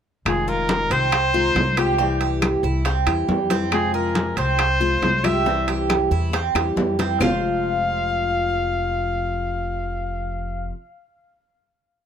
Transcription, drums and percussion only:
0.26 high bongo medium
0.26 high conga soft
0.26 high timbale medium
0.26 claves medium
0.48 high conga soft
0.69 high bongo medium
0.69 high conga loud
0.69 high timbale medium
0.91 high bongo soft
0.91 high timbale medium
1.12 high bongo medium
1.12 high conga soft
1.12 high timbale loud
1.12 claves medium
1.34 high bongo soft
1.34 high conga soft
1.56 high bongo soft
1.56 low bongo medium
1.56 high conga medium
1.56 high timbale medium
1.56 low timbale medium
1.77 high bongo soft
1.77 high timbale medium
1.77 claves medium
1.98 high bongo medium
1.98 high conga soft
2.21 high conga soft
2.21 high timbale medium
2.42 high bongo medium
2.42 high conga medium
2.42 high timbale medium
2.42 claves medium
2.64 high bongo soft
2.85 high bongo medium
2.85 high conga soft
2.85 high timbale medium
3.07 high bongo soft
3.07 high conga soft
3.07 high timbale loud
3.07 claves medium
3.29 high bongo soft
3.29 low bongo medium
3.29 high conga medium
3.29 low timbale medium
3.50 high bongo soft
3.50 high conga medium
3.50 high timbale medium
3.72 high bongo medium
3.72 high conga soft
3.72 high timbale medium
3.72 claves medium
3.94 high conga soft
4.15 high bongo medium
4.15 high conga loud
4.15 high timbale medium
4.37 high bongo soft
4.37 high timbale medium
4.59 high bongo medium
4.59 high conga soft
4.59 high timbale loud
4.59 claves medium
4.81 high bongo soft
4.81 high conga soft
5.02 high bongo soft
5.02 low bongo medium
5.02 high conga medium
5.02 high timbale medium
5.02 low timbale medium
5.24 high bongo soft
5.24 high conga medium
5.24 high timbale medium
5.24 claves medium
5.46 high bongo medium
5.46 high conga soft
5.68 high conga soft
5.68 high timbale medium
5.90 high bongo medium
5.90 high conga medium
5.90 high timbale medium
5.90 claves medium
6.12 high bongo soft
6.33 high bongo medium
6.33 high conga soft
6.33 high timbale medium
6.55 high bongo medium
6.55 high conga soft
6.55 high timbale medium
6.55 claves medium
6.77 low bongo medium
6.77 high conga medium
6.77 low timbale medium
6.99 low bongo medium
6.99 high conga medium
6.99 high timbale medium
7.20 low bongo medium
7.20 low conga loud
7.20 low timbale medium
7.20 claves loud

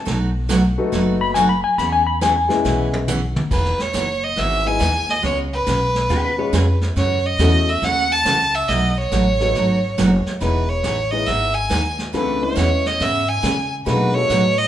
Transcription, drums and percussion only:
0.07 brush sweep soft
0.07 snare soft
0.49 snare medium
0.49 hi-hat pedal medium
0.92 brush sweep medium
0.92 snare medium
1.35 snare medium
1.35 hi-hat pedal medium
1.78 brush sweep soft
1.78 snare soft
2.21 snare medium
2.21 hi-hat pedal medium
2.50 snare medium
2.65 snare medium
2.93 high tom medium
3.08 hi-hat pedal medium
3.08 mid tom medium
3.36 mid tom loud
3.51 brush sweep soft
3.51 kick medium
3.51 snare soft
3.51 crash medium
3.65 snare soft
3.79 snare soft
3.94 snare medium
3.94 hi-hat pedal medium
4.37 brush sweep medium
4.37 snare soft
4.80 snare medium
4.80 hi-hat pedal medium
5.09 snare soft
5.23 brush sweep soft
5.23 snare soft
5.67 snare medium
5.67 hi-hat pedal medium
5.95 snare soft
6.09 brush sweep medium
6.09 snare soft
6.53 snare medium
6.53 hi-hat pedal medium
6.81 snare soft
6.96 brush sweep soft
6.96 snare soft
7.39 snare medium
7.39 hi-hat pedal medium
7.82 brush sweep soft
7.82 snare soft
8.25 snare medium
8.25 hi-hat pedal medium
8.69 brush sweep medium
8.69 snare soft
9.12 snare medium
9.12 hi-hat pedal soft
9.40 snare soft
9.55 brush sweep medium
9.55 snare soft
9.98 snare medium
9.98 hi-hat pedal medium
10.26 snare soft
10.41 brush sweep soft
10.41 snare soft
10.84 snare medium
10.84 hi-hat pedal soft
11.27 brush sweep medium
11.27 snare soft
11.70 snare medium
11.70 hi-hat pedal medium
11.99 snare soft
12.14 brush sweep medium
12.14 snare soft
12.57 snare medium
12.57 hi-hat pedal medium
12.85 snare soft
13.00 brush sweep medium
13.00 snare soft
13.44 snare medium
13.44 hi-hat pedal medium
13.87 brush sweep soft
13.87 snare soft
14.30 snare medium
14.30 hi-hat pedal medium

